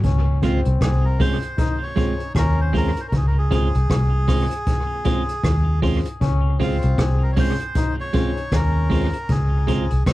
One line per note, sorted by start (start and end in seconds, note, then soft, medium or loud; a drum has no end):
0.03 0.62 C#2 loud
0.03 0.44 C#4 loud
0.03 kick loud
0.03 closed hi-hat medium
0.42 0.59 G#3 medium
0.42 1.16 C4 medium
0.42 0.59 C4 medium
0.42 0.66 C#4 medium
0.42 0.67 F4 medium
0.42 0.60 F4 medium
0.42 0.61 F4 medium
0.42 0.67 G#4 medium
0.42 0.67 C5 medium
0.42 kick medium
0.42 closed hi-hat medium
0.65 0.80 C2 medium
0.65 closed hi-hat medium
0.81 1.39 C2 medium
0.81 1.05 G#4 medium
0.81 kick loud
0.81 cross-stick loud
0.81 closed hi-hat medium
1.05 1.21 A#4 medium
1.19 1.36 G#3 medium
1.19 1.36 C4 medium
1.19 1.44 C#4 medium
1.19 1.38 C#4 medium
1.19 1.44 F4 medium
1.19 1.37 F4 medium
1.19 1.44 G#4 medium
1.19 1.44 C5 loud
1.19 1.84 C5 loud
1.19 kick medium
1.19 open hi-hat medium
1.42 closed hi-hat soft
1.58 1.77 D#4 loud
1.58 kick loud
1.58 closed hi-hat loud
1.83 2.33 C#5 loud
1.96 2.13 G#3 medium
1.96 2.13 C4 medium
1.96 2.21 C#4 medium
1.96 2.28 C#4 medium
1.96 2.21 F4 medium
1.96 2.13 F4 medium
1.96 2.21 G#4 medium
1.96 2.21 C5 loud
1.96 kick medium
1.96 closed hi-hat medium
2.20 closed hi-hat soft
2.35 2.93 D#2 medium
2.35 2.93 C#4 loud
2.35 2.60 A#4 loud
2.35 kick loud
2.35 cross-stick loud
2.35 closed hi-hat medium
2.61 2.76 C5 loud
2.73 2.90 G#3 medium
2.73 2.90 C4 medium
2.73 2.98 C#4 medium
2.73 2.98 F4 medium
2.73 2.91 F4 medium
2.73 2.98 G#4 medium
2.73 3.01 A#4 loud
2.73 2.99 C5 loud
2.73 kick medium
2.73 open hi-hat medium
2.97 3.07 C5 medium
2.97 closed hi-hat medium
3.08 3.15 A#4 medium
3.12 3.70 C#2 loud
3.12 kick loud
3.12 closed hi-hat medium
3.17 3.26 G#4 medium
3.27 3.37 A#4 medium
3.38 3.52 G#4 medium
3.51 3.67 G#3 medium
3.51 3.68 C4 medium
3.51 3.75 C#4 medium
3.51 3.75 F4 medium
3.51 3.68 F4 medium
3.51 3.75 G#4 medium
3.51 5.80 G#4 loud
3.51 3.76 C5 loud
3.51 kick medium
3.51 closed hi-hat medium
3.74 3.89 C2 medium
3.74 closed hi-hat medium
3.90 4.48 C2 medium
3.90 kick loud
3.90 cross-stick loud
3.90 closed hi-hat medium
4.28 4.45 G#3 medium
4.28 4.45 C4 medium
4.28 4.52 C#4 medium
4.28 4.52 F4 medium
4.28 4.45 F4 medium
4.28 4.53 G#4 medium
4.28 4.53 C5 loud
4.28 kick medium
4.28 cross-stick medium
4.28 open hi-hat medium
4.51 closed hi-hat soft
4.67 kick loud
4.67 closed hi-hat loud
5.05 5.22 G#3 medium
5.05 5.22 C4 medium
5.05 5.30 C#4 medium
5.05 5.30 F4 medium
5.05 5.22 F4 medium
5.05 5.30 G#4 medium
5.05 5.30 C5 medium
5.05 kick loud
5.05 closed hi-hat medium
5.29 closed hi-hat soft
5.44 6.02 D#2 medium
5.44 kick loud
5.44 cross-stick loud
5.44 closed hi-hat medium
5.82 5.99 G#3 medium
5.82 5.99 C4 medium
5.82 6.07 C#4 loud
5.82 6.07 F4 medium
5.82 5.99 F4 medium
5.82 6.07 G#4 medium
5.82 6.07 C5 loud
5.82 kick medium
5.82 open hi-hat medium
6.05 muted clean electric guitar stroke soft
6.05 closed hi-hat soft
6.21 6.79 C#2 medium
6.21 6.62 C#4 loud
6.21 kick loud
6.21 closed hi-hat medium
6.60 6.76 G#3 medium
6.60 6.76 C4 medium
6.60 7.33 C4 loud
6.60 6.84 C#4 medium
6.60 6.84 F4 medium
6.60 6.77 F4 medium
6.60 7.01 F4 medium
6.60 6.84 G#4 medium
6.60 6.85 C5 medium
6.60 kick medium
6.60 open hi-hat soft
6.82 6.98 C2 medium
6.82 closed hi-hat medium
6.98 7.56 C2 medium
6.98 7.23 G#4 medium
6.98 kick loud
6.98 cross-stick loud
6.98 closed hi-hat medium
7.23 7.31 A#4 medium
7.32 7.38 C#5 medium
7.37 7.53 G#3 medium
7.37 7.53 C4 medium
7.37 7.61 C#4 loud
7.37 7.56 C#4 medium
7.37 7.61 F4 medium
7.37 7.54 F4 loud
7.37 7.61 G#4 medium
7.37 7.62 C5 loud
7.37 7.96 C5 loud
7.37 kick medium
7.37 open hi-hat medium
7.59 closed hi-hat soft
7.75 7.94 D#4 loud
7.75 kick loud
7.75 closed hi-hat loud
8.00 8.55 C#5 loud
8.13 8.30 G#3 medium
8.13 8.30 C4 medium
8.13 8.38 C#4 medium
8.13 8.45 C#4 medium
8.13 8.38 F4 medium
8.13 8.30 F4 medium
8.13 8.38 G#4 medium
8.13 8.39 C5 loud
8.13 kick loud
8.13 closed hi-hat medium
8.37 closed hi-hat soft
8.52 9.10 D#2 medium
8.52 9.10 C#4 loud
8.52 9.33 A#4 loud
8.52 kick loud
8.52 cross-stick loud
8.52 closed hi-hat medium
8.90 9.07 G#3 medium
8.90 9.07 C4 medium
8.90 9.15 C#4 medium
8.90 9.07 F4 medium
8.90 9.15 F4 medium
8.90 9.15 G#4 medium
8.90 9.16 C5 loud
8.90 kick medium
8.90 open hi-hat medium
9.13 muted clean electric guitar stroke soft
9.13 closed hi-hat medium
9.29 9.87 C#2 medium
9.29 10.03 G#4 medium
9.29 kick loud
9.29 closed hi-hat medium
9.67 9.84 G#3 medium
9.67 9.84 C4 medium
9.67 9.92 C#4 medium
9.67 9.92 F4 medium
9.67 9.84 F4 medium
9.67 9.92 G#4 medium
9.67 9.93 C5 loud
9.67 kick medium
9.67 closed hi-hat medium
9.90 10.06 C2 medium
9.90 closed hi-hat medium
10.06 10.13 C2 medium
10.06 kick loud
10.06 cross-stick loud
10.06 closed hi-hat medium